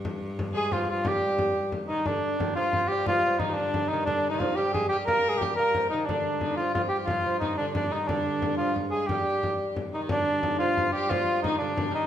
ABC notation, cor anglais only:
X:1
M:6/8
L:1/16
Q:3/8=119
K:Gphr
V:1 name="Cor anglais"
z6 A2 F2 F2 | G8 z2 E2 | D6 F4 G2 | F4 E2 D4 E2 |
D3 E F2 G2 A2 G2 | B3 A G2 B4 E2 | D6 F2 F2 G2 | F4 E2 D2 D2 E2 |
D6 F2 z2 A2 | G8 z2 E2 | D6 F4 G2 | F4 E2 D4 E2 |]